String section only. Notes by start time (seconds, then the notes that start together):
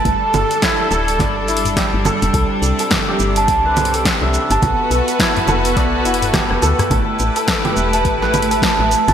0.05 G3 D4 A4
2.34 C3
4.62 B3 F#4 B4
6.91 A3 E4 B4